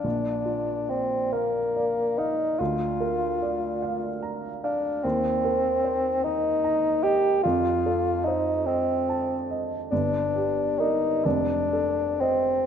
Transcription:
<<
  \new Staff \with { instrumentName = "Grand piano" } { \time 6/8 \key bes \major \tempo 4. = 48 bes,,8 f'8 d''8 f''8 d''8 f''8 | d,8 bes'8 d''8 f''8 bes''8 f''8 | ees,8 bes'8 c''8 ees''8 bes''8 ees''8 | f,8 a'8 c''8 ees''8 a''8 ees''8 |
g,,8 g'8 <bes' d''>8 f,,8 a'8 <c'' ees''>8 | }
  \new Staff \with { instrumentName = "Bassoon" } { \time 6/8 \key bes \major d'4 c'8 bes4 ees'8 | f'2 r8 d'8 | c'4. ees'4 g'8 | f'4 ees'8 c'4 r8 |
d'4 ees'8 d'4 c'8 | }
>>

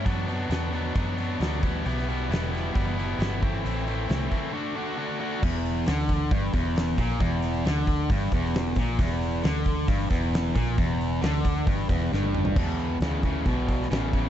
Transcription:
<<
  \new Staff \with { instrumentName = "Distorted electric guitar" } { \clef bass \time 4/4 \key e \minor \tempo 4 = 134 <b, fis b d'>8 <b, fis b d'>8 <b, fis b d'>8 <b, fis b d'>8 <b, fis b d'>8 <b, fis b d'>8 <b, fis b d'>8 <b, g b e'>8 | <b, g b e'>8 <b, g b e'>8 <b, g b e'>8 <b, g b e'>8 <b, g b e'>8 <b, g b e'>8 <b, g b e'>8 <a, e a c' e'>8 | <a, e a c' e'>8 <a, e a c' e'>8 <a, e a c' e'>8 <a, e a c' e'>8 <d a d' fis'>8 <d a d' fis'>8 <d a d' fis'>8 <d a d' fis'>8 | e,4 d4 g,8 e,4 ais,8 |
e,4 d4 g,8 e,4 ais,8 | e,4 d4 g,8 e,4 ais,8 | e,4 d4 g,8 e,8 g,4 | <e, b,>4 <e, cis>8 <e, cis>8 <e, b,>4 <e, cis>8 <e, cis>8 | }
  \new Staff \with { instrumentName = "Fingered electric bass" } { \clef bass \time 4/4 \key e \minor fis,4 e,4 fis,4 d,4 | b,,4 e,,4 fis,,4 g,,4 | a,,4 c,8 r2 r8 | e,,4 d,4 g,,8 e,,4 ais,,8 |
e,,4 d,4 g,,8 e,,4 ais,,8 | e,,4 d,4 g,,8 e,,4 ais,,8 | e,,4 d,4 g,,8 e,,8 g,,4 | e,4 d,4 b,,4 a,,4 | }
  \new DrumStaff \with { instrumentName = "Drums" } \drummode { \time 4/4 <hho bd>8 hho8 <hho sn>8 hho8 <hho bd>8 hho8 <hho sn>8 <hho bd>8 | hho16 sn16 hho8 <hho sn>8 <hho sn>8 <hho bd>8 hho8 <hho sn>8 <hho bd>8 | hho8 hho8 <hho sn>8 <hho bd>8 r4 r4 | <cymc bd>8 hho8 <hho sn>8 <hho bd>8 <hho bd>8 <hho bd>8 <hho sn>8 <hho bd>8 |
<hho bd>8 hho8 <hho sn>8 <hho bd>8 <hho bd>8 <hho bd>16 sn16 <hho sn>8 <hho bd>8 | <hho bd>8 hho8 <hho sn>8 <hho bd>8 <hho bd>8 <hho bd>8 <hho sn>8 <hho bd>8 | <hho bd>8 hho8 <hho sn>8 <hho bd>8 <hho bd>8 <hho bd>8 sn16 tommh16 toml16 tomfh16 | <cymc bd>8 hho8 <hho sn>8 <hho bd>8 <hho bd>8 <hho bd>16 sn16 <hho sn>8 <hho bd>8 | }
>>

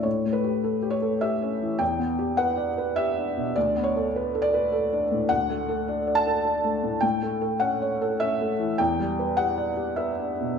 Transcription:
\new Staff \with { instrumentName = "Felt piano" } { \time 3/4 \key e \dorian \tempo 4 = 103 << { cis''8 b'4 cis''8 e''4 | g''4 fis''4 e''4 | d''8 cis''4 d''8 r4 | fis''4. a''4. |
g''4 fis''4 e''4 | g''4 fis''4 e''4 | } \\ { \tuplet 3/2 { a,8 a8 g'8 a'8 g'8 a'8 g'8 cis'8 e8 } | \tuplet 3/2 { e,8 b8 g'8 b'8 d''8 b'8 g'8 d'8 b,8 } | \tuplet 3/2 { d,8 b8 a'8 b'8 a'8 b'8 a'8 d'8 a,8 } | \tuplet 3/2 { d,8 a8 a'8 d'8 d''8 a'8 d'8 a8 a,8 } |
\tuplet 3/2 { a,8 a8 a'8 cis'8 cis''8 a'8 cis'8 a8 e8 } | \tuplet 3/2 { e,8 g8 b'8 g'8 d''8 g'8 b'8 d'8 b,8 } | } >> }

